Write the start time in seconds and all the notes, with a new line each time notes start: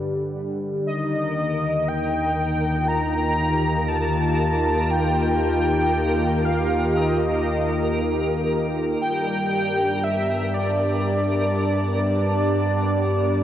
Already playing: G2 D3 G3 B4
0.86 D#2 D#3 A#4 D#5 D7
1.24 A#3
1.88 G5
2.71 F4
2.88 A#5
3.25 G4
3.88 A5
4.90 G5
6.45 F5
6.97 D#5
9.01 G2 G3 G5
9.61 D4
9.85 B3
10.04 E5
10.18 A5
10.54 D5